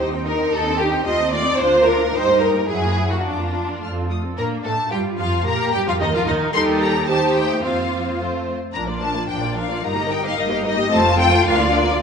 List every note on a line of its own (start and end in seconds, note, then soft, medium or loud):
0.00 0.46 D#2 medium
0.00 0.12 D#4 medium
0.00 1.06 D#4 medium
0.00 0.12 G4 medium
0.00 0.11 D#5 medium
0.12 0.26 C4 medium
0.12 0.25 D#4 medium
0.12 0.25 G5 medium
0.25 0.38 D#4 medium
0.25 0.39 G4 medium
0.25 0.52 A#4 medium
0.25 0.39 D#5 medium
0.39 0.53 C4 medium
0.39 0.51 D#4 medium
0.39 0.52 G5 medium
0.52 1.00 D#2 medium
0.52 0.64 D#4 medium
0.52 0.65 G4 medium
0.52 0.80 A4 loud
0.52 0.64 D#5 medium
0.65 0.79 C4 medium
0.65 0.79 D#4 medium
0.65 0.79 G5 medium
0.80 0.91 D#4 medium
0.80 1.06 G4 medium
0.80 0.93 G4 medium
0.80 0.93 D#5 medium
0.92 1.06 C4 medium
0.92 1.06 D#4 medium
0.92 1.06 G5 medium
1.05 1.54 D#2 medium
1.05 1.19 A3 medium
1.05 1.59 C4 medium
1.05 1.19 F4 medium
1.05 1.32 D#5 medium
1.05 1.19 C6 medium
1.20 1.34 C4 medium
1.20 1.34 D#4 medium
1.20 1.33 A5 medium
1.31 1.47 A3 medium
1.31 1.47 F4 medium
1.31 1.59 D5 loud
1.31 1.46 C6 medium
1.46 1.60 C4 medium
1.46 1.60 D#4 medium
1.46 1.60 A5 medium
1.59 2.08 D2 medium
1.59 1.73 D4 medium
1.59 2.15 F4 medium
1.59 1.73 F4 medium
1.59 1.87 C5 loud
1.59 1.72 D6 medium
1.74 1.87 A#3 medium
1.74 1.87 D4 medium
1.74 1.88 A#5 medium
1.85 2.00 D4 medium
1.85 2.01 F4 medium
1.85 2.14 A#4 loud
1.85 2.01 D6 medium
2.01 2.15 A#3 medium
2.01 2.15 D4 medium
2.01 2.15 A#5 medium
2.14 2.63 G2 medium
2.14 2.28 G3 medium
2.14 2.69 D#4 medium
2.14 2.28 D#4 medium
2.14 2.42 C5 loud
2.14 2.28 G5 medium
2.28 2.42 A#3 medium
2.28 2.42 G4 medium
2.28 2.42 A#5 medium
2.41 2.57 G3 medium
2.41 2.57 D#4 medium
2.41 2.69 A#4 medium
2.41 2.55 G5 medium
2.55 2.69 A#3 medium
2.55 2.70 G4 medium
2.55 2.69 A#5 medium
2.68 3.19 F#2 medium
2.68 2.83 F#3 medium
2.68 3.25 E4 medium
2.68 2.83 E4 medium
2.68 3.10 G#4 loud
2.68 2.82 F#5 medium
2.82 2.98 A#3 medium
2.82 2.98 F#4 medium
2.82 2.97 A#5 medium
2.97 3.12 F#3 medium
2.97 3.12 E4 medium
2.97 3.12 F#5 soft
3.11 3.26 A#3 medium
3.11 3.25 F#4 medium
3.11 3.26 F#4 soft
3.11 3.26 A#5 soft
3.24 3.75 F2 medium
3.24 4.09 D4 medium
3.24 3.38 D4 medium
3.24 3.39 F4 soft
3.24 4.08 F4 medium
3.24 3.39 D6 medium
3.39 3.54 A#3 soft
3.39 3.53 D4 soft
3.39 3.54 A#5 soft
3.54 3.66 D4 soft
3.54 3.68 F4 soft
3.54 3.68 D6 soft
3.67 3.82 A#3 soft
3.67 3.81 D4 soft
3.67 3.82 A#5 soft
3.81 4.31 F2 medium
3.81 3.95 A3 soft
3.81 3.95 F4 soft
3.81 3.90 F6 medium
3.95 4.10 C4 soft
3.95 4.10 A4 soft
4.10 4.24 A3 soft
4.10 4.24 F4 soft
4.10 4.19 D#6 medium
4.24 4.38 C4 medium
4.24 4.38 A4 medium
4.37 4.45 A#2 medium
4.37 4.63 A#3 medium
4.37 4.89 D4 medium
4.37 4.46 A#4 medium
4.37 4.47 A#5 medium
4.64 4.73 A2 medium
4.64 4.92 A3 medium
4.64 4.72 A4 medium
4.64 4.92 A5 medium
4.90 5.19 G2 medium
4.90 5.20 G3 medium
4.90 5.47 F4 medium
4.90 4.98 G4 medium
4.90 4.99 G5 medium
5.18 5.47 F2 medium
5.18 5.47 F3 medium
5.18 5.46 F4 medium
5.18 5.46 F5 medium
5.45 5.73 A#2 medium
5.45 5.73 A#3 medium
5.45 6.00 G4 medium
5.45 5.73 A#4 medium
5.45 5.73 A#5 medium
5.73 5.79 G2 medium
5.73 5.79 G3 medium
5.73 5.87 G4 medium
5.73 5.79 G5 loud
5.86 5.93 F2 medium
5.86 5.91 F3 medium
5.86 5.93 F4 medium
5.86 5.94 F5 loud
6.00 6.14 D#2 loud
6.00 6.05 D#3 medium
6.00 6.06 D#4 loud
6.00 6.55 A#4 medium
6.00 6.14 D#5 loud
6.14 6.19 F2 medium
6.14 6.19 F3 medium
6.14 6.28 F4 medium
6.14 6.20 F5 loud
6.26 6.34 D#2 medium
6.26 6.53 D#3 medium
6.26 6.55 D#4 medium
6.26 6.35 D#5 medium
6.54 7.59 D#2 medium
6.54 7.05 G3 medium
6.54 7.05 D#4 medium
6.54 7.05 G4 medium
6.54 7.09 A4 loud
6.54 7.05 A#4 medium
6.54 6.62 C6 loud
6.82 7.08 A#5 loud
7.08 7.16 G3 medium
7.08 7.62 D#4 medium
7.08 7.62 G4 medium
7.08 7.63 G4 medium
7.08 7.63 C5 medium
7.08 7.35 A5 loud
7.36 7.63 A3 medium
7.36 7.63 G5 loud
7.64 8.54 F2 medium
7.64 8.19 A#3 medium
7.64 8.19 C4 medium
7.64 8.45 F4 medium
7.64 8.18 F4 medium
7.64 8.18 C5 medium
7.64 8.18 F5 medium
8.19 8.55 A3 medium
8.19 8.54 C4 medium
8.19 8.53 F4 medium
8.19 8.54 C5 medium
8.74 9.23 A#1 medium
8.74 8.87 F3 medium
8.74 9.80 D4 medium
8.74 8.88 D4 medium
8.74 8.88 A#4 medium
8.74 8.82 A#5 medium
8.87 9.02 A#3 medium
8.87 9.02 F4 medium
8.87 9.02 D5 medium
9.00 9.16 F3 medium
9.00 9.16 D4 medium
9.00 9.16 A#4 medium
9.00 9.28 A5 medium
9.16 9.29 A#3 medium
9.16 9.29 F4 medium
9.16 9.30 D5 medium
9.28 9.77 A#1 medium
9.28 9.42 F3 medium
9.28 9.42 D4 medium
9.28 9.41 A#4 medium
9.28 9.56 G5 medium
9.41 9.57 A#3 medium
9.41 9.56 F4 soft
9.41 9.57 F4 medium
9.41 9.56 D5 medium
9.55 9.71 F3 medium
9.55 9.70 D4 medium
9.55 9.71 D4 medium
9.55 9.70 A#4 medium
9.55 9.83 F5 medium
9.69 9.84 A#3 medium
9.69 9.83 F4 medium
9.69 9.84 F4 medium
9.69 9.83 D5 medium
9.82 10.32 G1 medium
9.82 9.97 G3 medium
9.82 9.97 D#4 medium
9.82 10.37 D#4 medium
9.82 9.96 A#4 medium
9.82 10.11 A#5 medium
9.95 10.11 A#3 medium
9.95 10.10 G4 medium
9.95 10.11 G4 medium
9.95 10.10 D#5 medium
10.08 10.25 G3 medium
10.08 10.25 D#4 medium
10.08 10.23 A#4 medium
10.08 10.25 G5 medium
10.23 10.38 A#3 medium
10.23 10.37 G4 medium
10.23 10.38 G4 medium
10.23 10.37 D#5 medium
10.23 10.38 F5 loud
10.37 10.85 G1 medium
10.37 10.51 G3 medium
10.37 10.51 D#4 medium
10.37 10.91 D#4 medium
10.37 10.50 A#4 medium
10.37 10.52 D#5 medium
10.50 10.64 A#3 medium
10.50 10.64 G4 medium
10.50 10.65 G4 medium
10.50 10.64 D#5 medium
10.50 10.66 F5 loud
10.63 10.78 G3 medium
10.63 10.78 D#4 medium
10.63 10.78 A#4 medium
10.63 10.91 D#5 loud
10.77 10.91 A#3 medium
10.77 10.91 G4 medium
10.77 10.92 G4 medium
10.77 10.91 D#5 medium
10.90 11.40 F1 medium
10.90 11.03 A3 medium
10.90 11.04 C4 medium
10.90 12.00 F4 loud
10.90 11.04 A4 medium
10.90 11.04 C5 medium
10.90 11.19 A5 loud
11.04 11.18 F3 medium
11.04 11.17 A3 medium
11.04 11.19 F4 medium
11.04 11.19 A4 medium
11.18 11.31 A3 medium
11.18 11.32 C4 medium
11.18 11.33 A4 medium
11.18 11.33 C5 medium
11.18 11.46 G5 loud
11.32 11.46 F3 medium
11.32 11.46 A3 medium
11.32 11.47 F4 medium
11.32 11.47 A4 medium
11.46 11.95 D2 loud
11.46 11.59 D3 medium
11.46 11.59 D4 medium
11.46 11.60 D4 medium
11.46 11.60 A#4 medium
11.46 11.74 F5 loud
11.59 11.73 F3 medium
11.59 11.73 A#3 medium
11.59 11.74 F4 medium
11.59 11.74 D5 medium
11.73 11.87 D3 medium
11.73 11.87 D4 medium
11.73 11.88 D4 medium
11.73 11.89 A#4 medium
11.73 12.01 D5 loud
11.86 12.01 F3 medium
11.86 12.01 A#3 medium
11.90 12.02 F4 medium
11.90 12.02 D5 medium